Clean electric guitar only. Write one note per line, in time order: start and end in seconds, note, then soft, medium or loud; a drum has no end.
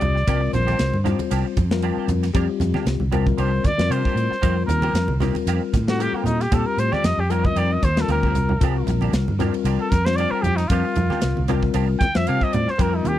0.01 muted clean electric guitar stroke soft
0.15 muted clean electric guitar stroke soft
0.28 0.42 F3 medium
0.28 0.41 A#3 medium
0.28 0.41 D4 medium
0.28 0.40 G4 medium
0.42 muted clean electric guitar stroke soft
0.54 muted clean electric guitar stroke soft
0.67 0.78 A#3 soft
0.67 0.78 D4 soft
0.67 0.78 G4 soft
0.79 muted clean electric guitar stroke soft
1.04 1.19 F3 medium
1.04 1.19 A#3 medium
1.04 1.18 D4 medium
1.04 1.18 G4 medium
1.19 muted clean electric guitar stroke soft
1.31 1.45 F3 medium
1.31 1.45 A#3 medium
1.31 1.45 D4 medium
1.31 1.45 G4 medium
1.46 muted clean electric guitar stroke soft
1.57 muted clean electric guitar stroke soft
1.83 1.97 F3 medium
1.83 1.97 A#3 medium
1.83 1.97 D4 medium
1.83 1.97 G4 medium
1.98 2.09 A#3 soft
1.98 2.09 D4 medium
1.98 2.09 G4 medium
2.10 muted clean electric guitar stroke soft
2.23 muted clean electric guitar stroke soft
2.35 2.49 F3 medium
2.35 2.48 A#3 medium
2.35 2.47 D4 medium
2.35 2.47 G4 medium
2.48 muted clean electric guitar stroke soft
2.61 muted clean electric guitar stroke soft
2.74 2.86 A#3 soft
2.74 2.86 D4 medium
2.74 2.86 G4 medium
2.86 muted clean electric guitar stroke soft
3.12 3.27 F3 medium
3.12 3.26 A#3 medium
3.12 3.26 D4 medium
3.12 3.26 G4 medium
3.27 muted clean electric guitar stroke soft
3.38 3.53 F3 medium
3.38 3.51 A#3 medium
3.38 3.51 D4 medium
3.38 3.51 G4 medium
3.52 muted clean electric guitar stroke soft
3.63 muted clean electric guitar stroke soft
3.91 4.05 F3 medium
3.91 4.05 A#3 medium
3.91 4.04 D4 medium
3.91 4.04 G4 medium
4.05 4.16 A#3 soft
4.05 4.16 D4 soft
4.05 4.17 G4 medium
4.31 muted clean electric guitar stroke soft
4.42 4.57 D#3 medium
4.42 4.56 A#3 medium
4.42 4.56 C4 medium
4.42 4.55 G4 medium
4.56 muted clean electric guitar stroke soft
4.68 muted clean electric guitar stroke soft
4.83 4.94 A#3 soft
4.83 4.94 C4 soft
4.83 4.95 G4 medium
4.95 muted clean electric guitar stroke soft
5.20 5.35 D#3 medium
5.20 5.35 A#3 medium
5.20 5.35 C4 medium
5.20 5.35 G4 medium
5.36 muted clean electric guitar stroke soft
5.48 5.62 D#3 medium
5.48 5.62 A#3 medium
5.48 5.62 C4 medium
5.48 5.62 G4 loud
5.63 muted clean electric guitar stroke medium
5.73 muted clean electric guitar stroke soft
5.99 6.14 D#3 medium
5.99 6.14 A#3 medium
5.99 6.14 C4 medium
5.99 6.13 G4 medium
6.14 6.25 A#3 soft
6.14 6.26 C4 medium
6.14 6.26 G4 medium
6.26 muted clean electric guitar stroke soft
6.41 muted clean electric guitar stroke soft
6.52 6.66 D#3 medium
6.52 6.65 A#3 medium
6.52 6.65 C4 medium
6.52 6.65 G4 medium
6.66 muted clean electric guitar stroke soft
6.78 muted clean electric guitar stroke soft
6.92 7.04 A#3 soft
6.92 7.04 C4 medium
6.92 7.04 G4 medium
7.05 muted clean electric guitar stroke soft
7.31 7.45 D#3 medium
7.31 7.45 A#3 medium
7.31 7.44 C4 medium
7.31 7.45 G4 medium
7.46 muted clean electric guitar stroke soft
7.56 7.71 D#3 medium
7.56 7.71 A#3 medium
7.56 7.71 C4 medium
7.56 7.70 G4 medium
7.71 muted clean electric guitar stroke soft
7.83 muted clean electric guitar stroke soft
8.09 8.23 D#3 medium
8.09 8.23 A#3 medium
8.09 8.23 C4 medium
8.09 8.23 G4 medium
8.24 8.34 A#3 soft
8.24 8.35 C4 soft
8.24 8.35 G4 medium
8.35 muted clean electric guitar stroke soft
8.50 muted clean electric guitar stroke soft
8.62 8.76 F3 medium
8.62 8.76 A#3 medium
8.62 8.77 D4 medium
8.62 8.76 G4 medium
8.77 muted clean electric guitar stroke soft
8.89 muted clean electric guitar stroke soft
9.02 9.13 A#3 medium
9.02 9.13 D4 medium
9.02 9.13 G4 medium
9.14 muted clean electric guitar stroke soft
9.40 9.54 F3 medium
9.40 9.54 A#3 medium
9.40 9.54 D4 medium
9.40 9.53 G4 medium
9.54 muted clean electric guitar stroke soft
9.65 9.80 F3 medium
9.65 9.80 A#3 medium
9.65 9.80 D4 medium
9.65 9.79 G4 medium
9.81 muted clean electric guitar stroke soft
9.92 muted clean electric guitar stroke soft
10.19 10.33 F3 medium
10.19 10.33 A#3 medium
10.19 10.33 D4 medium
10.19 10.33 G4 medium
10.34 10.43 A#3 soft
10.34 10.43 D4 soft
10.34 10.43 G4 medium
10.44 muted clean electric guitar stroke soft
10.59 muted clean electric guitar stroke soft
10.72 10.85 F3 medium
10.72 10.85 A#3 medium
10.72 10.84 D4 medium
10.72 10.84 G4 medium
10.85 muted clean electric guitar stroke soft
10.96 muted clean electric guitar stroke soft
11.10 11.21 A#3 soft
11.10 11.21 D4 soft
11.10 11.21 G4 medium
11.21 muted clean electric guitar stroke soft
11.49 11.63 F3 medium
11.49 11.63 A#3 medium
11.49 11.62 D4 medium
11.49 11.62 G4 medium
11.63 muted clean electric guitar stroke soft
11.74 11.89 F3 medium
11.74 11.88 A#3 medium
11.74 11.87 D4 loud
11.74 11.87 G4 medium
11.88 muted clean electric guitar stroke soft
12.01 muted clean electric guitar stroke soft
12.28 12.42 F3 medium
12.28 12.41 A#3 medium
12.28 12.41 D4 medium
12.28 12.40 G4 medium
12.41 12.53 A#3 soft
12.41 12.53 D4 soft
12.41 12.53 G4 medium
12.53 muted clean electric guitar stroke soft
12.68 muted clean electric guitar stroke soft
12.78 12.93 D#3 medium
12.78 12.93 A#3 medium
12.78 12.93 C4 medium
12.78 12.93 G4 medium
12.94 muted clean electric guitar stroke soft
13.06 muted clean electric guitar stroke soft